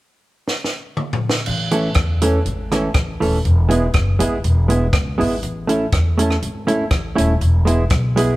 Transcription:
0.48 snare medium
0.64 snare medium
0.97 mid tom medium
1.13 floor tom loud
1.29 snare medium
1.46 1.89 A1 loud
1.46 crash medium
1.71 1.88 E3 medium
1.71 1.88 A3 medium
1.71 1.89 C#4 medium
1.71 1.89 A4 medium
1.71 closed hi-hat medium
1.94 2.38 E2 medium
1.94 kick loud
1.94 cross-stick loud
1.94 closed hi-hat medium
2.22 2.38 E3 medium
2.22 2.38 A3 medium
2.22 2.39 C#4 medium
2.22 2.39 A4 loud
2.22 closed hi-hat loud
2.46 2.88 G#1 medium
2.46 closed hi-hat medium
2.72 2.88 E3 medium
2.72 2.88 A3 medium
2.72 2.88 C#4 medium
2.72 2.88 A4 medium
2.72 cross-stick medium
2.72 closed hi-hat medium
2.94 3.17 A1 medium
2.94 kick loud
2.94 cross-stick loud
2.94 closed hi-hat medium
3.20 3.41 D#1 medium
3.20 3.37 E3 medium
3.20 3.37 A3 medium
3.20 3.38 C#4 medium
3.20 3.38 A4 medium
3.20 open hi-hat medium
3.45 3.87 E1 loud
3.45 closed hi-hat medium
3.69 3.86 G#3 medium
3.69 3.86 B3 medium
3.69 3.86 E4 medium
3.69 3.86 G#4 medium
3.69 closed hi-hat medium
3.93 4.17 F#1 medium
3.93 kick loud
3.93 cross-stick loud
3.93 closed hi-hat medium
4.19 4.41 G#1 medium
4.19 4.36 G#3 medium
4.19 4.36 B3 medium
4.19 4.36 E4 medium
4.19 4.36 G#4 loud
4.19 closed hi-hat loud
4.44 4.86 E1 loud
4.44 closed hi-hat medium
4.68 4.85 G#3 medium
4.68 4.85 B3 medium
4.68 4.86 E4 medium
4.68 4.86 G#4 medium
4.68 closed hi-hat medium
4.93 5.16 C#2 medium
4.93 kick loud
4.93 cross-stick loud
4.93 closed hi-hat medium
5.18 5.40 G#1 medium
5.18 5.35 G#3 medium
5.18 5.35 B3 medium
5.18 5.35 E4 medium
5.18 5.35 G#4 medium
5.18 open hi-hat medium
5.43 5.85 A1 loud
5.43 closed hi-hat medium
5.67 5.84 A3 medium
5.67 5.85 C#4 medium
5.67 5.85 E4 medium
5.67 5.85 A4 medium
5.67 closed hi-hat medium
5.92 6.35 E2 medium
5.92 kick loud
5.92 cross-stick loud
5.92 closed hi-hat medium
6.18 6.34 A3 medium
6.18 6.34 C#4 medium
6.18 6.35 E4 medium
6.18 6.35 A4 medium
6.18 closed hi-hat loud
6.31 cross-stick medium
6.42 6.84 G#1 medium
6.42 closed hi-hat medium
6.67 6.83 A3 medium
6.67 6.84 C#4 medium
6.67 6.84 E4 medium
6.67 6.84 A4 medium
6.67 closed hi-hat medium
6.91 7.14 A1 medium
6.91 kick loud
6.91 cross-stick loud
6.91 closed hi-hat medium
7.16 7.38 D#1 medium
7.16 7.33 A3 medium
7.16 7.33 C#4 medium
7.16 7.33 E4 medium
7.16 7.33 A4 medium
7.16 closed hi-hat loud
7.41 7.83 E1 loud
7.41 closed hi-hat medium
7.65 7.82 G#3 medium
7.65 7.83 B3 medium
7.65 7.83 E4 medium
7.65 7.83 G#4 medium
7.65 closed hi-hat medium
7.90 8.33 B1 medium
7.90 kick loud
7.90 cross-stick loud
7.90 closed hi-hat medium
8.16 8.32 G#3 medium
8.16 8.33 B3 medium
8.16 8.33 E4 medium
8.16 8.33 G#4 loud
8.16 closed hi-hat loud

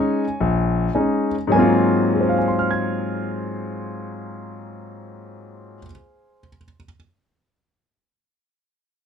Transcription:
0.00 0.24 G#3 soft
0.00 0.24 C#4 soft
0.00 0.24 D#4 soft
0.00 1.28 C#5 medium
0.00 1.26 G#5 medium
0.40 0.87 A#1 medium
0.95 1.34 G#3 soft
0.95 1.34 C#4 soft
0.95 1.34 D#4 soft
1.47 5.77 G#2 medium
1.47 5.80 F#3 medium
1.52 5.83 A#3 medium
1.52 2.37 G#5 medium
1.56 5.86 C4 medium
1.56 5.89 F4 medium
2.13 6.39 G#4 soft
2.21 6.47 C5 soft
2.29 6.55 F5 soft
2.38 6.64 G#5 soft
2.48 6.74 C6 soft
2.59 6.85 F6 soft
2.71 6.97 G#6 soft

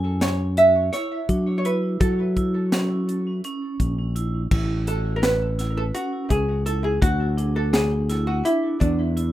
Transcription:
0.00 0.89 F#2 medium
0.00 0.24 A4 medium
0.00 0.35 G#5 medium
0.21 0.57 C#5 medium
0.21 snare loud
0.21 closed hi-hat medium
0.57 0.82 F#4 medium
0.57 0.91 E5 medium
0.57 closed hi-hat medium
0.93 1.18 E4 medium
0.93 1.57 C#5 medium
0.93 snare soft
0.93 closed hi-hat medium
1.29 1.97 F#3 medium
1.29 1.54 D4 medium
1.29 kick medium
1.29 closed hi-hat medium
1.58 1.65 C#5 medium
1.65 2.14 E4 medium
1.65 1.99 B4 medium
1.65 closed hi-hat medium
2.00 3.40 F#3 medium
2.00 3.76 A4 medium
2.00 kick loud
2.00 closed hi-hat medium
2.37 2.61 E4 medium
2.37 kick medium
2.37 closed hi-hat soft
2.72 3.22 C#4 medium
2.72 snare loud
2.72 closed hi-hat medium
3.09 closed hi-hat medium
3.44 3.94 C#4 medium
3.44 closed hi-hat medium
3.80 4.47 A#1 medium
3.80 kick medium
3.80 closed hi-hat medium
4.16 4.40 E4 medium
4.16 closed hi-hat medium
4.51 5.91 A1 medium
4.51 4.76 E4 medium
4.51 kick loud
4.51 crash medium
4.87 5.37 F#4 medium
4.87 5.16 A4 medium
4.87 closed hi-hat medium
5.16 5.23 A#4 medium
5.23 5.77 B4 medium
5.23 snare loud
5.23 closed hi-hat medium
5.59 5.84 E4 medium
5.59 snare soft
5.59 closed hi-hat medium
5.77 5.82 A4 medium
5.95 6.44 C#4 medium
5.95 6.30 F#4 medium
5.95 closed hi-hat medium
6.30 6.98 C#2 medium
6.30 6.65 G#4 medium
6.30 kick medium
6.30 closed hi-hat medium
6.66 6.91 E4 medium
6.66 6.84 A4 medium
6.66 closed hi-hat medium
6.84 7.02 G#4 medium
7.02 8.41 D2 medium
7.02 7.26 F#4 medium
7.02 7.56 F#4 medium
7.02 kick loud
7.02 closed hi-hat medium
7.38 7.87 D4 medium
7.38 closed hi-hat medium
7.56 7.73 A4 medium
7.73 8.27 G#4 medium
7.73 snare loud
7.73 closed hi-hat medium
8.09 8.34 E4 medium
8.09 snare soft
8.09 closed hi-hat medium
8.27 8.46 F#4 medium
8.45 8.94 D4 medium
8.45 8.80 E4 medium
8.45 closed hi-hat medium
8.80 9.32 E2 medium
8.80 9.32 D4 medium
8.80 kick medium
8.80 closed hi-hat medium
9.17 9.32 E4 medium
9.17 closed hi-hat medium

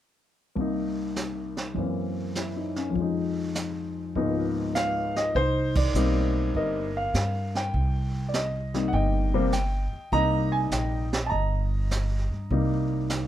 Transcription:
0.55 1.76 C2 soft
0.55 1.76 C3 soft
0.55 1.77 A#3 soft
0.55 brush sweep soft
0.55 kick soft
0.60 1.78 D#4 medium
1.16 snare soft
1.16 hi-hat pedal soft
1.57 snare soft
1.74 2.95 F#2 soft
1.74 2.96 E3 soft
1.74 2.97 A#3 soft
1.74 brush sweep soft
1.74 kick soft
1.80 2.98 C4 soft
2.35 2.74 E4 soft
2.35 snare soft
2.35 hi-hat pedal soft
2.56 2.87 D#4 soft
2.76 3.07 C#4 soft
2.76 snare soft
2.90 4.13 F2 soft
2.90 4.14 F3 soft
2.96 4.16 G#3 soft
2.96 brush sweep medium
2.96 kick soft
3.02 4.15 D#4 soft
3.55 snare medium
3.55 hi-hat pedal medium
4.15 5.35 C#2 medium
4.15 5.35 G#2 soft
4.15 5.35 F3 soft
4.15 5.36 A#3 soft
4.15 5.36 B3 soft
4.15 5.34 D#4 medium
4.15 brush sweep soft
4.15 kick soft
4.75 5.17 F5 loud
4.75 snare soft
4.75 hi-hat pedal soft
5.16 5.34 D#5 medium
5.16 snare soft
5.35 5.90 C2 medium
5.35 5.94 D#4 medium
5.35 5.73 C5 loud
5.35 brush sweep medium
5.35 kick soft
5.75 6.32 D5 medium
5.75 kick medium
5.75 ride medium
5.94 6.50 B1 medium
5.94 6.87 G3 medium
5.94 6.87 A#3 medium
5.94 6.87 C4 medium
5.94 6.87 D#4 medium
5.94 hi-hat pedal medium
6.55 7.10 G1 medium
6.55 7.70 A#4 medium
6.55 6.93 D#5 medium
6.55 brush sweep soft
6.55 kick soft
6.97 7.51 F5 medium
7.14 7.69 G2 medium
7.14 snare medium
7.14 hi-hat pedal soft
7.55 8.26 G5 medium
7.55 snare soft
7.74 8.89 C2 medium
7.74 brush sweep medium
7.74 kick soft
8.28 8.33 D5 medium
8.34 8.91 D#5 medium
8.34 snare medium
8.34 hi-hat pedal soft
8.74 9.29 C3 soft
8.74 9.30 G3 soft
8.74 9.30 A#3 soft
8.74 9.30 D#4 medium
8.74 snare soft
8.88 8.93 F#5 medium
8.93 9.89 G1 medium
8.93 10.09 D#5 medium
8.93 9.49 G5 medium
8.93 brush sweep medium
8.93 kick soft
9.34 9.51 C3 medium
9.34 9.51 G3 medium
9.34 9.51 A#3 medium
9.34 9.51 C4 medium
9.52 10.14 G5 medium
9.52 snare soft
9.52 hi-hat pedal medium
9.93 muted upright bass stroke soft
10.12 10.68 C2 medium
10.12 11.04 C3 medium
10.12 11.04 G3 medium
10.12 11.05 A#3 medium
10.12 11.05 D#4 medium
10.12 11.28 D#5 medium
10.12 10.50 A#5 loud
10.12 brush sweep medium
10.12 kick soft
10.52 10.57 G#5 medium
10.71 11.27 A#1 medium
10.71 11.23 G5 medium
10.71 snare medium
10.71 hi-hat pedal soft
11.13 snare medium
11.26 11.31 A5 medium
11.26 13.27 A#5 medium
11.31 12.28 G1 medium
11.31 13.27 D#5 medium
11.31 brush sweep medium
11.31 kick soft
11.91 snare medium
11.91 hi-hat pedal medium
12.31 12.49 G2 medium
12.50 13.27 C2 medium
12.50 13.27 C3 medium
12.50 13.27 G3 soft
12.50 13.27 A#3 medium
12.50 13.27 D#4 medium
12.50 brush sweep soft
12.50 kick soft
13.10 snare medium
13.10 hi-hat pedal medium

